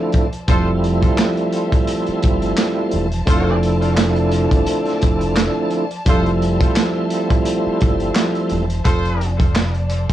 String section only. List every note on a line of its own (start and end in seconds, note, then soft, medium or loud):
0.00 0.44 F3 medium
0.00 0.44 C5 medium
0.00 0.45 D5 medium
0.00 0.44 A5 medium
0.48 6.02 F3 medium
0.48 6.02 C5 medium
0.48 3.24 E5 medium
0.48 10.13 A5 medium
3.27 6.03 D5 medium
6.07 10.13 F3 medium
6.07 10.13 C5 medium
6.07 8.83 E5 medium
8.85 10.13 D5 medium